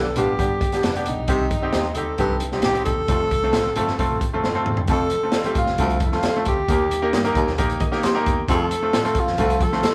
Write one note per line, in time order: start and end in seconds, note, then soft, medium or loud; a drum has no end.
0.00 0.13 B1 medium
0.00 0.14 A4 loud
0.06 muted conga soft
0.06 high conga medium
0.16 0.36 A1 medium
0.16 0.34 G2 medium
0.16 0.32 G3 medium
0.16 0.32 B3 medium
0.16 0.32 D4 medium
0.16 0.32 F4 medium
0.16 0.87 G4 medium
0.16 closed hi-hat medium
0.16 low conga medium
0.39 0.58 G1 medium
0.39 0.62 G3 medium
0.39 0.62 B3 medium
0.39 0.62 D4 medium
0.39 0.63 G4 medium
0.39 kick medium
0.39 closed hi-hat medium
0.39 muted conga soft
0.39 high conga medium
0.50 muted conga soft
0.61 0.80 G1 medium
0.61 kick medium
0.61 closed hi-hat medium
0.61 high conga medium
0.72 0.88 G3 medium
0.72 0.88 B3 medium
0.72 0.88 D4 medium
0.72 0.88 G4 medium
0.72 snare soft
0.72 closed hi-hat medium
0.83 0.94 F1 medium
0.83 1.10 D4 medium
0.83 0.93 G4 medium
0.83 0.94 B4 medium
0.83 0.94 D5 medium
0.83 snare loud
0.83 closed hi-hat medium
0.83 muted conga soft
0.83 high conga medium
0.95 1.19 G3 medium
0.95 1.19 B3 medium
0.95 1.19 D4 medium
0.95 1.19 G4 medium
0.95 closed hi-hat soft
0.95 muted conga soft
1.06 1.16 A#1 medium
1.06 1.98 D#4 medium
1.06 closed hi-hat medium
1.06 low conga medium
1.17 1.27 B1 medium
1.28 1.48 C2 medium
1.28 1.46 C3 medium
1.28 1.52 G3 medium
1.28 1.52 C4 medium
1.28 1.52 D#4 medium
1.28 1.52 G4 medium
1.28 kick loud
1.28 closed hi-hat medium
1.28 muted conga soft
1.28 low conga medium
1.51 1.71 G1 medium
1.51 kick medium
1.51 closed hi-hat medium
1.51 high conga soft
1.62 1.86 G3 medium
1.62 1.86 C4 medium
1.62 1.86 D#4 medium
1.62 1.86 G4 medium
1.73 1.93 D#2 medium
1.73 1.83 D#4 medium
1.73 1.84 G4 medium
1.73 1.84 C5 loud
1.73 snare medium
1.73 closed hi-hat medium
1.73 muted conga soft
1.84 muted conga soft
1.84 high conga medium
1.95 2.15 D2 medium
1.95 2.12 G3 medium
1.95 2.12 C4 medium
1.95 2.12 D#4 medium
1.95 2.12 G4 medium
1.95 2.41 A4 medium
1.95 closed hi-hat medium
1.95 low conga medium
2.18 2.48 C2 medium
2.18 2.37 G2 medium
2.18 2.42 G3 medium
2.18 2.42 C4 medium
2.18 2.42 D#4 medium
2.18 2.43 G4 medium
2.18 kick medium
2.18 closed hi-hat medium
2.18 muted conga soft
2.18 high conga medium
2.40 closed hi-hat medium
2.40 high conga medium
2.52 2.62 C2 medium
2.52 2.68 G3 medium
2.52 2.68 C4 medium
2.52 2.68 D#4 medium
2.52 2.68 G4 medium
2.52 snare soft
2.62 2.73 A1 medium
2.62 2.74 D#4 medium
2.62 2.74 G4 medium
2.62 2.85 G4 medium
2.62 2.74 C5 medium
2.62 snare loud
2.62 closed hi-hat medium
2.62 high conga medium
2.74 2.98 G3 medium
2.74 2.98 C4 medium
2.74 2.99 D#4 medium
2.74 2.99 G4 medium
2.74 closed hi-hat soft
2.74 muted conga soft
2.85 2.96 D#2 medium
2.85 4.39 A4 loud
2.85 kick medium
2.85 closed hi-hat medium
2.85 low conga medium
2.97 3.07 E1 medium
3.08 3.31 F1 loud
3.08 3.26 F2 medium
3.08 3.32 A3 medium
3.08 3.32 C4 medium
3.08 3.32 F4 medium
3.08 3.32 A4 medium
3.08 kick loud
3.08 closed hi-hat medium
3.08 low conga medium
3.18 muted conga soft
3.31 3.51 C2 medium
3.31 kick medium
3.31 closed hi-hat medium
3.43 3.67 A3 medium
3.43 3.67 C4 medium
3.43 3.67 F4 medium
3.43 3.67 A4 medium
3.53 3.73 A1 medium
3.53 3.64 F4 medium
3.53 3.64 A4 medium
3.53 3.65 C5 medium
3.53 snare medium
3.53 closed hi-hat medium
3.53 muted conga soft
3.65 high conga medium
3.75 3.96 G1 medium
3.75 3.94 F2 medium
3.75 3.92 A3 medium
3.75 3.92 C4 medium
3.75 3.92 F4 medium
3.75 3.92 A4 medium
3.75 closed hi-hat medium
3.75 low conga medium
3.87 snare soft
3.99 4.09 F1 medium
3.99 4.23 A3 medium
3.99 4.23 C4 medium
3.99 4.23 F4 medium
3.99 4.23 A4 medium
3.99 kick medium
3.99 closed hi-hat medium
3.99 high conga medium
4.10 4.20 A1 medium
4.10 muted conga soft
4.20 kick medium
4.20 closed hi-hat medium
4.20 high conga medium
4.33 4.42 F1 medium
4.33 4.49 A3 medium
4.33 4.49 C4 medium
4.33 4.49 F4 medium
4.33 4.49 A4 medium
4.43 4.53 G1 medium
4.43 4.54 F4 medium
4.43 4.54 A4 medium
4.43 4.54 C5 medium
4.43 snare medium
4.43 muted conga soft
4.43 high conga medium
4.54 4.79 A3 medium
4.54 4.79 C4 medium
4.54 4.79 F4 medium
4.54 4.79 A4 medium
4.54 muted conga soft
4.65 4.85 E1 medium
4.65 mid tom medium
4.65 low conga medium
4.77 floor tom medium
4.87 5.42 F1 medium
4.87 5.07 F2 medium
4.87 5.13 A3 medium
4.87 5.13 C4 medium
4.87 5.13 F4 medium
4.87 5.13 A4 medium
4.87 kick loud
4.87 closed hi-hat medium
4.87 low conga medium
4.93 5.54 A4 loud
5.00 muted conga soft
5.10 closed hi-hat medium
5.10 high conga soft
5.23 5.39 A3 medium
5.23 5.39 C4 medium
5.23 5.39 F4 medium
5.23 5.39 A4 medium
5.32 5.44 F4 medium
5.32 5.44 A4 medium
5.32 5.44 C5 medium
5.32 snare loud
5.32 closed hi-hat medium
5.32 muted conga soft
5.44 5.69 A3 medium
5.44 5.69 C4 medium
5.44 5.69 F4 medium
5.44 5.69 G4 medium
5.44 closed hi-hat soft
5.44 muted conga soft
5.44 high conga medium
5.55 5.65 A1 medium
5.55 5.99 F4 medium
5.55 kick medium
5.55 closed hi-hat medium
5.55 low conga medium
5.66 5.77 F1 medium
5.66 snare soft
5.78 5.98 C2 loud
5.78 5.97 D2 medium
5.78 6.03 A3 medium
5.78 6.03 C4 medium
5.78 6.03 F4 medium
5.78 6.03 A4 medium
5.78 kick medium
5.78 closed hi-hat medium
5.78 high conga medium
5.90 closed hi-hat soft
5.90 muted conga soft
6.00 6.40 F2 medium
6.00 kick medium
6.00 closed hi-hat medium
6.00 high conga medium
6.06 6.45 F4 medium
6.12 6.28 A3 medium
6.12 6.28 C4 medium
6.12 6.28 F4 medium
6.12 6.28 A4 medium
6.12 snare soft
6.23 6.34 F4 medium
6.23 6.34 A4 medium
6.23 6.34 C5 medium
6.23 snare loud
6.23 closed hi-hat medium
6.23 muted conga soft
6.23 high conga medium
6.35 6.59 A3 medium
6.35 6.59 C4 medium
6.35 6.59 F4 medium
6.35 6.59 A4 medium
6.35 muted conga soft
6.45 6.66 D2 medium
6.45 7.33 G4 medium
6.45 kick medium
6.45 closed hi-hat medium
6.45 low conga medium
6.68 7.08 D#2 loud
6.68 6.87 D#2 medium
6.68 6.93 A#3 medium
6.68 6.93 D#4 medium
6.68 6.93 G4 medium
6.68 6.93 A#4 medium
6.68 kick loud
6.68 closed hi-hat medium
6.68 low conga medium
6.91 closed hi-hat medium
6.91 high conga soft
7.02 7.18 A#3 medium
7.02 7.18 D#4 medium
7.02 7.18 G4 medium
7.02 7.18 A#4 loud
7.13 7.43 G2 medium
7.13 7.24 A#3 medium
7.13 7.24 D#4 medium
7.13 7.24 G4 medium
7.13 snare loud
7.13 closed hi-hat medium
7.13 muted conga soft
7.24 7.48 A#3 medium
7.24 7.48 D#4 medium
7.24 7.49 G4 medium
7.24 7.49 A#4 loud
7.24 closed hi-hat soft
7.24 muted conga soft
7.24 high conga medium
7.35 7.54 D#2 medium
7.35 kick medium
7.35 closed hi-hat medium
7.35 low conga medium
7.47 7.57 D#2 medium
7.47 snare soft
7.58 7.78 A#1 medium
7.58 7.82 A#3 medium
7.58 7.82 D#4 medium
7.58 7.82 G4 medium
7.58 7.83 A#4 loud
7.58 kick medium
7.58 closed hi-hat medium
7.58 high conga medium
7.70 closed hi-hat soft
7.70 muted conga soft
7.80 8.20 D#3 medium
7.80 8.02 D#5 medium
7.80 kick medium
7.80 closed hi-hat medium
7.80 high conga medium
7.92 8.08 A#3 medium
7.92 8.08 D#4 medium
7.92 8.08 G4 medium
7.92 8.08 A#4 medium
7.92 snare soft
8.03 8.14 A#3 medium
8.03 8.14 D#4 medium
8.03 8.14 G4 medium
8.03 8.45 C6 medium
8.03 snare loud
8.03 closed hi-hat medium
8.03 muted conga soft
8.03 high conga medium
8.14 8.38 A#3 medium
8.14 8.39 D#4 medium
8.14 8.39 G4 medium
8.14 8.39 A#4 medium
8.14 muted conga soft
8.26 8.46 E2 medium
8.26 kick medium
8.26 closed hi-hat medium
8.26 low conga medium
8.48 8.88 F2 loud
8.48 8.67 F2 medium
8.48 8.72 A3 medium
8.48 8.72 C4 medium
8.48 8.73 F4 medium
8.48 8.73 A4 medium
8.48 kick loud
8.48 closed hi-hat medium
8.48 low conga medium
8.54 9.21 A4 loud
8.59 muted conga soft
8.71 closed hi-hat medium
8.71 high conga soft
8.82 8.98 A3 medium
8.82 8.98 C4 medium
8.82 8.99 F4 medium
8.82 8.98 A4 medium
8.93 9.23 A2 medium
8.93 9.04 F4 medium
8.93 9.04 A4 medium
8.93 9.04 C5 medium
8.93 snare loud
8.93 closed hi-hat medium
8.93 muted conga soft
9.03 9.28 A3 medium
9.03 9.28 C4 medium
9.03 9.29 F4 medium
9.03 9.29 A4 medium
9.03 closed hi-hat soft
9.03 muted conga soft
9.03 high conga medium
9.14 kick medium
9.14 closed hi-hat medium
9.14 low conga medium
9.20 9.64 F4 medium
9.27 9.37 F2 medium
9.27 snare soft
9.38 9.58 C2 medium
9.38 9.56 D2 medium
9.38 9.63 A3 medium
9.38 9.63 C4 medium
9.38 9.63 F4 medium
9.38 9.63 A4 medium
9.38 kick medium
9.38 closed hi-hat medium
9.38 muted conga soft
9.38 high conga medium
9.50 closed hi-hat soft
9.59 9.95 F3 medium
9.59 9.95 A4 loud
9.59 kick medium
9.59 closed hi-hat medium
9.59 high conga medium
9.72 9.88 A3 medium
9.72 9.88 C4 medium
9.72 9.88 F4 medium
9.72 9.88 A4 medium
9.72 snare soft
9.82 9.93 F4 medium
9.82 9.93 A4 medium
9.82 9.94 C5 medium
9.82 snare loud
9.82 closed hi-hat medium
9.82 muted conga soft
9.82 high conga medium